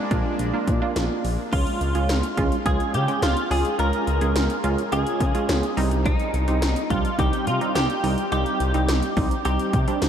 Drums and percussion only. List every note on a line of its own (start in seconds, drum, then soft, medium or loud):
0.11 kick loud
0.11 closed hi-hat medium
0.39 closed hi-hat medium
0.68 kick medium
0.68 closed hi-hat medium
0.96 snare loud
0.96 closed hi-hat medium
1.25 open hi-hat medium
1.53 kick loud
1.53 closed hi-hat medium
1.53 crash loud
1.67 closed hi-hat soft
1.81 closed hi-hat medium
1.95 closed hi-hat medium
2.09 snare loud
2.09 closed hi-hat medium
2.23 closed hi-hat medium
2.37 kick loud
2.37 closed hi-hat medium
2.52 closed hi-hat medium
2.66 kick loud
2.66 closed hi-hat medium
2.80 closed hi-hat medium
2.94 closed hi-hat medium
3.08 closed hi-hat medium
3.22 snare loud
3.22 closed hi-hat medium
3.37 closed hi-hat medium
3.51 open hi-hat medium
3.65 closed hi-hat medium
3.79 closed hi-hat medium
3.93 closed hi-hat medium
4.07 closed hi-hat medium
4.21 closed hi-hat medium
4.36 snare loud
4.36 closed hi-hat medium
4.50 closed hi-hat medium
4.64 closed hi-hat medium
4.78 closed hi-hat medium
4.92 closed hi-hat medium
5.07 closed hi-hat medium
5.20 kick medium
5.20 closed hi-hat medium
5.35 closed hi-hat medium
5.49 snare loud
5.49 closed hi-hat medium
5.63 closed hi-hat medium
5.77 open hi-hat medium
5.91 closed hi-hat medium
6.06 kick loud
6.06 closed hi-hat medium
6.20 closed hi-hat medium
6.34 closed hi-hat medium
6.48 closed hi-hat medium
6.62 snare loud
6.62 closed hi-hat medium
6.76 closed hi-hat medium
6.90 kick loud
6.90 closed hi-hat medium
7.05 closed hi-hat medium
7.19 kick loud
7.19 closed hi-hat medium
7.33 closed hi-hat medium
7.47 closed hi-hat medium
7.61 closed hi-hat medium
7.75 snare loud
7.75 closed hi-hat medium
7.90 closed hi-hat medium
8.04 open hi-hat medium
8.18 closed hi-hat medium
8.32 closed hi-hat medium
8.46 closed hi-hat medium
8.60 closed hi-hat medium
8.74 closed hi-hat medium
8.89 snare loud
8.89 closed hi-hat medium
9.03 closed hi-hat medium
9.17 kick loud
9.17 open hi-hat medium
9.31 closed hi-hat medium
9.45 closed hi-hat medium
9.59 closed hi-hat medium
9.73 kick medium
9.73 closed hi-hat medium
9.88 closed hi-hat medium
10.02 snare loud
10.02 closed hi-hat medium